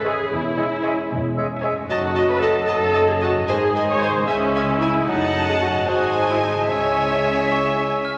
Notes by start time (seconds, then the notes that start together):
Already playing: G#1 G#2 C#3 E3 G#3 C#4 E4
0.04 G#3 G#4 C#5 E5 G#5
0.14 E2
0.18 G#3
0.22 C#4
0.27 E4
0.32 E1 E2 G#3 E4
0.57 G#3 C#5 E5 G#5
0.83 G#3 C#5 E5 G#5
1.12 E1 E2
1.37 G#3 C#5 E5 G#5
1.62 G#3 C#5 E5 G#5
1.72 F#2
1.77 A3
1.81 D#4
1.86 A4
1.90 F#1 F#2 F#3 A3 D#4 F#4 D#5 A5
2.15 D#5 A5
2.30 B4
2.42 A4 D#5 A5
2.67 F#1 F#2 A4 D#5 A5
2.94 D#5 A5
3.10 G#4
3.21 F#4 D#5 A5
3.30 G#2
3.35 C4
3.39 D#4
3.44 G#4
3.48 G#1 G#2 D#3 G#3 G#4 C5 D#5 G#5
3.75 C5 D#5 G#5
3.89 C#5
4.01 C5 D#5 G#5
4.10 C#3
4.14 C#4
4.19 E4
4.23 G#3 C#4 G#4
4.27 C#2 C#3 E4 E5 G#5
4.54 E5 G#5
4.81 E4 E5 G#5
4.89 F#2
4.94 A3
4.99 D#4
5.03 A4
5.07 F#1 F#2 F#3 A3 D#4 D#5 F#5 A5
5.48 G#4
5.61 F#4
5.69 G#2
5.74 G#3
5.78 D#4
5.83 C5
5.88 G#1 G#2 G#3 D#4 F#4 C5 D#5 G#5
6.30 E4
6.43 D#4
6.52 C#3
6.57 G#3
6.61 E4
6.66 G#3 C#5
6.70 C#2 C#3 C#4 E4 C#5 E5 G#5
7.52 C#6
8.05 F6